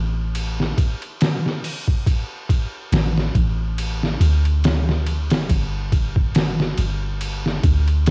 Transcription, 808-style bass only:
Already playing: A1
2.92 A1
3.35 A1
4.20 D2
5.31 E1
5.49 G1
6.78 G1
7.64 D2

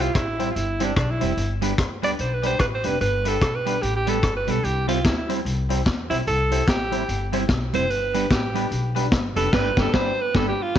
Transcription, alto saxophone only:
0.01 F4
0.15 E4
0.51 F4
0.56 E4
0.83 D4
0.97 D4
1.11 E4
2.04 D5
2.21 C5
2.34 B4
2.47 C5
2.60 B4
2.75 C5
2.87 B4
3.01 B4
3.28 A4
3.55 B4
3.82 G4
3.96 G4
4.09 A4
4.37 B4
4.51 A4
4.64 G4
4.88 F4
5.05 E4
5.18 E4
6.10 E4
6.27 A4
6.69 G4
7.75 C5
7.90 B4
8.31 G4
9.36 A4
9.53 B4
9.80 A4
9.94 C5
10.21 B4
10.36 A4
10.49 G4
10.63 F4

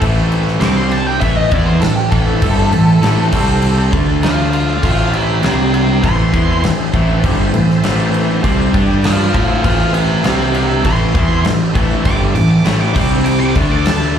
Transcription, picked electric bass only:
0.02 A1
0.61 C2
1.22 A1
1.52 E2
1.82 A1
2.12 A1
2.42 G1
2.71 A1
3.01 A1
3.33 C2
3.93 D2
4.83 A1
5.44 C2
6.04 A1
6.34 E2
6.64 A1
6.94 A1
7.24 G1
7.54 A1
7.84 A1
8.44 C2
8.74 G2
9.34 A2
9.64 A1
10.25 C2
10.84 A1
11.15 E2
11.44 A1
11.75 A1
12.05 G1
12.34 A1
12.66 A1
12.96 C2
13.56 D2

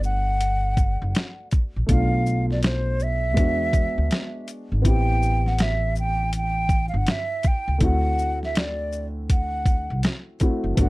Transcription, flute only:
0.05 F#5
1.90 F5
2.52 D5
2.65 C5
3.03 E5
4.88 G5
5.48 F#5
5.62 E5
5.99 G5
6.37 G5
6.89 F5
6.97 F#5
7.11 E5
7.48 G5
7.84 F#5
8.45 E5
8.58 D5
9.31 F#5
10.81 F#5

